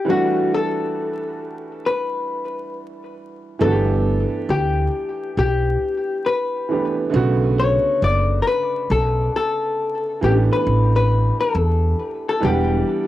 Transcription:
0.05 upright piano E3 G3 A3
0.10 upright piano D4 F#4, hollow-body jazz guitar F#4
0.54 hollow-body jazz guitar A4
1.86 hollow-body jazz guitar B4
3.59 upright bass G1, upright piano E3 A3 B3, hollow-body jazz guitar A4
3.64 upright piano D4 F#4
3.72 upright piano G4
4.49 upright bass D2, hollow-body jazz guitar G4
5.37 upright bass B1, hollow-body jazz guitar G4
6.26 hollow-body jazz guitar B4
6.69 upright piano E3 A3 B3 D4 G4
7.10 upright bass B1, upright piano D3 A3 B3
7.14 upright piano C#3 F#4
7.60 hollow-body jazz guitar C#5
8.02 upright bass F#1, hollow-body jazz guitar D5
8.42 hollow-body jazz guitar A#4
8.47 hollow-body jazz guitar B4
8.90 upright bass B1, hollow-body jazz guitar A4
9.36 hollow-body jazz guitar A4
10.21 upright bass A1, upright piano E3 A3 B3 C#4, hollow-body jazz guitar G4
10.27 upright piano G4
10.32 upright piano D4
10.53 hollow-body jazz guitar B4
10.67 upright bass A1
10.96 hollow-body jazz guitar B4
11.40 hollow-body jazz guitar A4
11.55 upright bass E2
12.29 hollow-body jazz guitar A4
12.40 upright bass E1, upright piano E3 G3 B3
12.44 upright piano D4 F#5, hollow-body jazz guitar G4

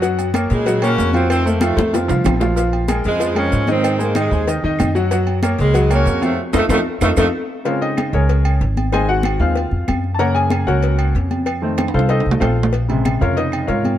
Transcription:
Already playing: upright bass F#2
0.02 grand piano F#3 F#4 F#5, cowbell, high conga, low agogo, maracas
0.19 high conga, low agogo, maracas
0.33 grand piano A#3 A#4 C#5, cowbell, high conga, low agogo, claves, maracas
0.50 upright bass A#2, horn section C#3 G#3, cowbell, high conga, maracas
0.66 grand piano F#3 F#4 F#5, cowbell, high conga, low agogo, maracas
0.82 grand piano A#3 A#4 C#5, horn section A#3 C#4 F#4, high conga, low agogo, claves, maracas
0.97 upright bass F2, cowbell, high conga, low timbale, maracas
1.13 grand piano F3 F4 F5, horn section C4, high conga, low agogo, maracas
1.29 horn section D#3 A3 C4, cowbell, high conga, low agogo, claves, maracas
1.46 grand piano A3 A4 C5, horn section A#3, high conga, maracas
1.61 horn section C3 D#3 A3, grand piano F3 F4 F5, cowbell, high conga, low agogo, claves, maracas
1.76 upright bass F2, grand piano A3 A4 C5, high bongo, maracas
1.93 grand piano F3 F4 F5, cowbell, high bongo, high conga, low agogo, maracas
2.08 upright bass C2, grand piano F3 F4 F5, high conga, high timbale, maracas
2.24 upright bass A#1, cowbell, low bongo, high conga, high timbale, low agogo, claves, maracas
2.40 grand piano F3 F4 F5, low bongo, high conga, low timbale, maracas
2.56 grand piano F3 F4 F5, cowbell, high conga, low agogo, maracas
2.73 high conga, low agogo
2.88 grand piano G#3 G#4 A#4, cowbell, high conga, low agogo, claves, maracas
3.04 upright bass F2, horn section C#3 F3 G#3, cowbell, high conga, maracas
3.19 grand piano F3 F4 F5, cowbell, high conga, low agogo, maracas
3.35 horn section F3 G#3 C#4, grand piano G#3 G#4 A#4, high conga, low agogo, claves
3.51 upright bass G#2, cowbell, high conga, maracas
3.67 grand piano D#3 D#4 D#5, horn section C4, high conga, low agogo, maracas
3.71 horn section D#3 G#3
3.83 cowbell, high conga, low agogo, claves, maracas
3.99 grand piano G#3 G#4 C5, high conga, maracas
4.03 horn section A#3
4.15 horn section C3 D#3 G#3, grand piano D#3 D#4 D#5, cowbell, high conga, low agogo, claves, maracas
4.31 upright bass D#2, grand piano G#3 G#4 C5, maracas
4.47 grand piano D#3 D#4 D#5, cowbell, high conga, low agogo, maracas
4.63 upright bass F2, grand piano D#3 D#4 D#5, high conga
4.79 upright bass F#2, cowbell, high conga, low timbale, low agogo, claves, maracas
4.95 grand piano F#3 F#4 F#5, high conga, maracas
5.11 grand piano F#3 F#4 F#5, cowbell, high conga, low agogo, maracas
5.27 high conga, low agogo
5.43 grand piano A#3 A#4 C#5, cowbell, high conga, low agogo, claves, maracas
5.58 upright bass C#2, horn section C#3 G#3, cowbell, high conga, maracas
5.74 grand piano F#3 F#4 F#5, cowbell, high conga, low agogo, maracas
5.90 grand piano A#3 A#4 C#5, horn section A#3 C#4 F#4, high conga, low agogo, claves, maracas
6.06 upright bass F2, cowbell, high conga, maracas
6.22 horn section C3 D#3 A3, grand piano F3 F4 F5, high conga, low agogo, maracas
6.53 upright bass F2, horn section D#3 F3 A3, grand piano D#4 F4 A4, cowbell, high conga, high timbale, claves, maracas
6.69 upright bass F2, horn section D#3 F3 A3, grand piano D#4 F4 A4, cowbell, high conga, high timbale, claves, maracas
7.01 upright bass F2, horn section D#3 F3 A3, grand piano D#4 F4 A4, cowbell, high conga, high timbale, claves, maracas
7.17 upright bass F2, horn section D#3 F3 A3, grand piano D#4 F4 A4, cowbell, high conga, high timbale, claves, maracas
7.65 grand piano C#3 G#3 C4 F4 A#4 C#5 F5, cowbell, high conga, low agogo
7.81 grand piano D#4 D#5, high conga, low agogo
7.97 cowbell, high conga, low agogo, claves
8.13 upright bass C#2, grand piano C#4 G#4 A#4 C#5, cowbell, high conga
8.29 cowbell, high conga, low agogo
8.45 high conga, low agogo, claves
8.61 upright bass G#1, cowbell, high conga
8.77 high conga, low agogo
8.92 grand piano D#3 G#3 C4 G#4 C5 D#5 G#5, cowbell, high conga, low agogo, claves
9.09 grand piano F#4 F#5, high conga
9.23 cowbell, high conga, low agogo, claves
9.39 upright bass D#2, grand piano D#3 G#3 C4 F4 F5
9.56 cowbell, high conga, low agogo
9.71 upright bass F2, high conga
9.88 upright bass F#2, cowbell, high conga, low agogo, claves
10.04 high conga
10.14 grand piano A5
10.19 grand piano C#3 A#3 C#4 A#4 C#5 F#5 A#5, cowbell, high conga, low agogo
10.35 grand piano G#4 G#5, high conga, low agogo
10.50 cowbell, high conga, low agogo, claves
10.67 upright bass C#2, grand piano F#4 A#4 C#5 F#5, cowbell, high conga
10.83 cowbell, high conga, low agogo
10.99 high conga, low agogo, claves
11.15 upright bass F2, cowbell, high conga
11.31 high conga, low agogo
11.46 cowbell, high conga, low agogo, claves
11.62 grand piano D#3 A3 C4, high conga
11.78 cowbell, high conga, high timbale, low agogo, claves
11.88 high timbale
11.94 upright bass C2, grand piano F4 A4 C5 F5
11.99 high timbale
12.09 grand piano D#4 A4 C5 D#5, cowbell, high conga, low agogo
12.20 high timbale
12.26 upright bass C2, high conga
12.31 low timbale
12.40 upright bass A#1, grand piano F4 A4 C5 F5, cowbell, high conga, low timbale, low agogo, claves
12.58 high conga
12.63 low timbale
12.73 cowbell, high conga, low agogo
12.88 grand piano C3 C#3 G#3, high conga, low agogo
13.05 cowbell, high conga, low agogo, claves
13.21 upright bass F2, grand piano F4 A#4 C#5 F5, cowbell, high conga
13.37 grand piano D#4 D#5, cowbell, high conga, low agogo
13.52 high conga, low agogo, claves
13.67 upright bass G#2, grand piano F4 A#4 C#5 F5, cowbell, high conga
13.84 high conga, low agogo

